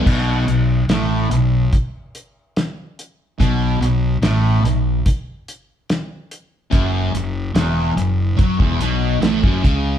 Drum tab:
CC |x---------------|----------------|----------------|
HH |--x-x-x-x-x-x-x-|x-x-x-x-x-x-x-x-|x-x-x-x-x-x-x-x-|
SD |----o-------o---|----o-------o---|----o-------o---|
BD |o-------o-------|o-------o-------|o-------oo---oo-|